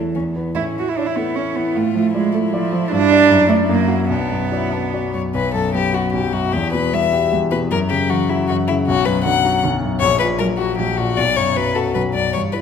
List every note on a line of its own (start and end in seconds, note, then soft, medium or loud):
0.00 0.12 E2 soft
0.00 0.17 E3 soft
0.00 0.35 E3 soft
0.00 0.14 A3 soft
0.00 0.16 E4 soft
0.00 0.17 C#5 soft
0.15 0.54 E2 soft
0.15 0.23 C#4 soft
0.35 0.55 B3 soft
0.35 0.54 E4 soft
0.35 0.54 B4 soft
0.55 1.72 A2 soft
0.55 0.93 C#4 soft
0.55 0.63 E4 medium
0.76 1.08 E3 soft
0.76 0.90 F#4 medium
0.89 0.99 E4 medium
0.96 1.08 D4 medium
0.96 1.77 E4 medium
0.96 1.14 E4 soft
0.96 1.14 C#5 soft
1.06 1.17 E4 medium
1.16 1.48 A3 soft
1.16 1.37 B3 medium
1.35 1.57 C#4 medium
1.35 1.54 E4 soft
1.35 1.54 C#5 soft
1.56 1.76 E3 soft
1.56 1.77 B3 medium
1.75 2.89 A2 soft
1.75 1.94 A3 medium
1.75 2.14 F4 medium
1.95 2.26 F3 soft
1.95 2.13 A3 medium
2.14 2.33 G#3 medium
2.14 4.06 E4 medium
2.14 2.32 F4 soft
2.14 2.32 D5 soft
2.33 2.65 A3 soft
2.33 2.39 A3 medium
2.46 2.54 G#3 soft
2.53 2.91 F3 medium
2.53 2.71 F4 soft
2.53 2.71 D5 medium
2.73 2.92 F3 medium
2.91 3.29 G2 medium
2.91 3.48 D4 loud
3.11 3.28 D4 medium
3.11 3.28 D5 medium
3.30 3.67 F#2 medium
3.49 3.57 A3 medium
3.49 3.67 D4 medium
3.49 3.67 D5 medium
3.68 4.08 F#2 medium
3.68 4.09 A#3 medium
3.88 4.07 F#4 soft
3.88 4.07 E5 soft
4.10 5.30 B1 medium
4.10 5.11 B3 medium
4.10 4.47 D4 medium
4.31 4.64 F#2 soft
4.51 4.74 E4 medium
4.51 4.70 F#4 soft
4.51 4.71 D5 soft
4.72 5.05 B3 soft
4.72 4.95 D4 medium
4.93 5.13 C#4 soft
4.93 5.11 F#4 soft
4.93 5.12 D5 soft
5.14 5.34 F#2 soft
5.14 5.22 C#5 medium
5.34 6.12 B1 medium
5.34 5.54 B4 medium
5.54 5.86 F#2 soft
5.54 5.74 A4 medium
5.74 6.03 F#3 medium
5.74 6.06 B3 soft
5.74 5.96 G4 medium
5.94 6.25 F#4 medium
5.94 6.12 F#4 medium
6.13 6.52 B1 medium
6.13 6.43 F#3 medium
6.13 6.34 G4 medium
6.33 6.53 F#2 soft
6.33 6.55 F#4 medium
6.53 7.31 E2 medium
6.53 6.72 G4 medium
6.73 7.05 B2 soft
6.73 6.95 B4 medium
6.93 7.22 G3 medium
6.93 7.24 B3 soft
6.93 7.33 E5 medium
7.12 7.44 G4 medium
7.32 7.70 E2 medium
7.32 7.61 G3 medium
7.51 7.71 B2 soft
7.51 7.59 B4 medium
7.71 8.48 F#2 medium
7.71 7.79 A#4 loud
7.90 8.22 C#3 soft
7.90 8.12 G4 medium
8.10 8.39 E3 medium
8.10 8.42 F#3 soft
8.10 8.31 F#4 medium
8.30 8.48 E4 medium
8.30 8.61 F#4 medium
8.48 8.87 F#2 medium
8.48 8.78 E3 medium
8.48 8.56 F#4 medium
8.68 8.88 C#3 soft
8.68 8.75 E4 medium
8.87 9.62 B1 medium
8.87 9.07 F#4 loud
9.05 9.37 F#2 medium
9.05 9.24 B4 medium
9.24 9.54 D3 medium
9.24 9.56 F#3 medium
9.24 9.62 F#5 loud
9.45 9.75 F#4 medium
9.64 10.01 B1 medium
9.64 9.92 D3 medium
9.84 10.02 F#2 medium
10.00 10.77 A#1 medium
10.00 10.19 C#5 loud
10.19 10.52 A#2 medium
10.19 10.27 B4 medium
10.39 10.69 F#3 medium
10.39 10.71 F#3 soft
10.39 10.47 A#4 medium
10.58 10.78 F#4 medium
10.58 10.90 F#4 medium
10.78 11.16 A#1 medium
10.78 11.07 F#3 medium
10.78 10.99 G4 medium
10.97 11.18 A#2 soft
10.97 11.19 F#4 medium
11.17 11.94 B1 medium
11.17 11.38 D5 loud
11.36 11.68 F#2 soft
11.36 11.58 C#5 medium
11.56 11.85 F#3 medium
11.56 11.87 F#3 soft
11.56 11.77 B4 loud
11.75 12.07 F#4 medium
11.75 11.94 A4 medium
11.95 12.33 B1 soft
11.95 12.24 F#3 medium
11.95 12.02 B4 medium
12.14 12.34 F#2 soft
12.14 12.33 D5 medium
12.34 12.62 G2 soft
12.34 12.62 E3 soft
12.34 12.42 C#5 medium
12.52 12.62 E4 soft
12.52 12.60 B4 medium
12.52 12.62 B4 soft